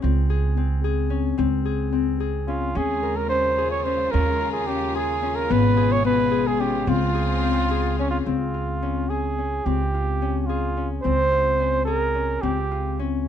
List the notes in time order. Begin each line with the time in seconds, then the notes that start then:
Already playing: G#4
0.02 C#2 C4
0.30 G#4
0.57 C4
0.84 G#4
1.10 C#4
1.38 C#2 C4
1.65 G#4
1.92 C4
2.20 G#4
2.47 C#4 F4
2.75 D#2 C#3 G#3 C#4 F4 G#4
3.03 A#4
3.16 A#4
3.29 C#4 C5
3.58 G#4
3.71 C#5
3.84 C#4 C5
4.11 D#2 C#4 A#4
4.41 A#4
4.52 G#4
4.66 C#4 G4
4.95 G#4
5.22 C#4
5.35 A#4
5.50 G#1 B2 G#3 B3 B4
5.77 G#4
5.92 C#5
6.04 B3 B4
6.31 G#4
6.47 G#4
6.60 C#4 G4
6.87 C#2 C#3 C4 F4
7.15 G#4
7.43 C4
7.71 G#4
7.99 C#4
8.10 F4
8.26 C#2 C4 F4
8.54 F4
8.82 C#4
9.09 G#4
9.38 C#4
9.65 C#2 C4 G4
9.94 F4
10.22 C#4
10.41 G4
10.46 F4 G#4
10.77 C#4
11.02 C#2 C4 C5
11.31 F4
11.60 C#4
11.85 G#4 A#4
12.14 C#4
12.42 C#2 C4 G4
12.71 F4
12.99 C#4